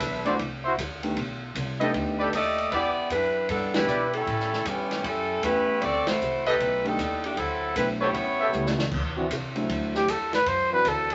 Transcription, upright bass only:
0.00 0.38 B1 medium
0.39 0.77 C2 medium
0.78 1.16 D2 medium
1.16 1.54 B1 medium
1.55 1.93 C2 medium
1.94 2.32 D2 medium
2.33 2.70 D#2 medium
2.72 2.95 E2 medium
2.96 muted upright bass stroke soft
3.10 3.48 F#2 medium
3.49 3.87 G2 medium
3.87 4.25 B2 medium
4.27 4.64 A2 medium
4.65 5.03 G2 medium
5.04 5.42 F#2 medium
5.43 5.80 E2 medium
5.81 6.05 D2 medium
6.06 muted upright bass stroke soft
6.21 6.58 C2 medium
6.60 6.97 B1 medium
6.98 7.36 D#2 medium
7.37 7.74 D2 medium
7.76 8.13 B1 medium
8.14 8.52 A1 medium
8.53 8.90 C#2 medium
8.92 9.29 D2 medium
9.30 9.68 C2 medium
9.69 10.06 D2 medium
10.08 10.45 E2 medium
10.46 10.84 F#2 medium
10.85 11.15 D2 medium

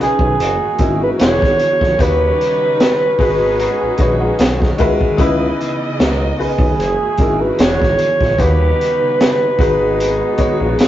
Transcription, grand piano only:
0.00 0.39 C#3 medium
0.00 0.39 C#4 medium
0.00 0.39 D#4 medium
0.00 0.40 F4 medium
0.00 0.40 B4 medium
0.79 1.19 F#3 medium
0.79 1.19 C#4 medium
0.79 1.19 D#4 medium
0.79 1.19 E4 medium
0.79 1.20 G#4 medium
0.79 1.20 A#4 medium
1.19 1.84 E3 medium
1.19 1.85 B3 medium
1.19 1.85 D4 medium
1.19 1.85 F#4 medium
1.19 1.27 G4 medium
1.28 1.89 G#4 medium
1.98 2.92 D#3 medium
1.98 2.92 D#4 medium
1.98 2.92 F#4 medium
1.98 2.92 G4 medium
1.98 2.93 B4 medium
1.98 2.93 C#5 loud
3.18 3.84 G#3 medium
3.18 3.84 D#4 medium
3.18 3.84 F#4 medium
3.18 3.85 G#4 medium
3.18 3.85 B4 loud
3.18 3.39 G#5 medium
3.41 3.58 B5 medium
3.60 3.80 A#5 medium
3.81 4.18 G#5 medium
3.98 4.62 G#3 medium
3.98 4.62 D#4 medium
3.98 4.62 F#4 medium
3.98 4.62 B4 medium
3.98 4.63 C#5 medium
4.20 4.37 F#5 medium
4.39 4.76 F#5 medium
4.78 5.10 D#3 medium
4.78 5.10 G#3 loud
4.78 5.11 F#4 loud
4.78 5.11 A#4 loud
4.78 5.11 B4 loud
4.78 5.16 E5 medium
5.17 5.98 C#3 loud
5.17 5.98 C#4 medium
5.17 5.98 D#4 medium
5.17 5.99 E4 medium
5.17 5.99 B4 loud
6.37 6.78 C#3 medium
6.37 6.78 C#4 medium
6.37 6.78 D#4 medium
6.37 6.79 F4 medium
6.37 6.79 B4 medium
7.19 7.59 F#3 medium
7.19 7.59 C#4 medium
7.19 7.59 D#4 medium
7.19 7.59 E4 medium
7.19 7.59 G#4 medium
7.19 7.60 A#4 medium
7.58 8.24 E3 medium
7.58 8.24 B3 medium
7.58 8.24 D4 medium
7.58 8.25 F#4 medium
7.58 8.25 G#4 medium
8.38 9.32 D#3 medium
8.38 9.32 D#4 medium
8.38 9.32 F#4 medium
8.38 9.32 G4 medium
8.38 9.32 B4 medium
8.38 9.33 C#5 medium
9.58 10.24 G#3 medium
9.58 10.24 D#4 medium
9.58 10.24 F#4 medium
9.58 10.24 G#4 medium
9.58 10.25 B4 loud
10.37 10.88 G#3 medium
10.37 10.88 D#4 medium
10.37 10.88 F#4 medium
10.37 10.88 B4 medium
10.37 10.88 C#5 loud

